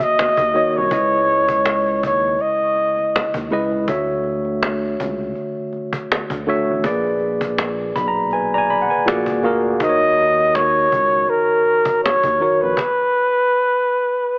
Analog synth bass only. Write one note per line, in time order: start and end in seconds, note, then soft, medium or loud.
0.21 0.28 D#2 medium
0.39 0.53 D#2 medium
0.78 0.91 C2 medium
0.92 2.06 C#2 loud
2.05 2.37 D#2 loud
3.35 3.50 D#2 medium
3.54 3.86 C#2 medium
3.89 4.96 D2 loud
5.01 5.33 C#2 medium
6.13 6.21 D2 soft
6.31 6.46 D2 loud
6.71 6.84 A1 medium
6.85 7.92 A#1 loud
7.97 8.87 B1 medium
9.09 9.26 A#1 medium
9.27 9.47 G#1 medium
9.46 9.78 D2 medium
9.81 10.88 D#2 loud
10.94 11.26 C#2 medium
12.06 12.13 D#2 medium
12.25 12.39 D#2 medium
12.63 12.77 A#1 medium